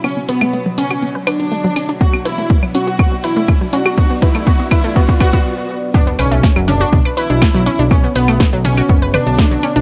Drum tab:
HH |x-oxx-oxx-oxx-ox|x-oxx-oxx-oxx-ox|x-oxx-oxx-ox----|x-oxx-oxx-oxx-ox|
CL |x--x---x--x---x-|-x---x--x---x--x|---x--x---x-----|--x--x---x--x---|
SD |----------------|----------------|----------------|----o-------o---|
T2 |--oo------------|--oo----------o-|--oo------------|------o-o-------|
BD |----------------|o---o---o---o---|o-o-o-o-oooo----|o---o---o---o---|

HH |x-oox-oxx-oxo-ox|
CL |x--x---x--x---x-|
SD |----o-------o---|
T2 |------o---o-----|
BD |o---o---o---o---|